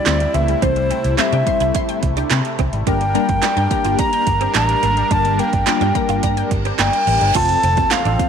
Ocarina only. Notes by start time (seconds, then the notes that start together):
Already playing: D5
0.34 E5
0.63 C5
1.19 E5
2.87 G5
3.99 A#5
4.56 A#5
5.12 A5
5.39 G5
6.79 G5
7.36 A5
7.91 F5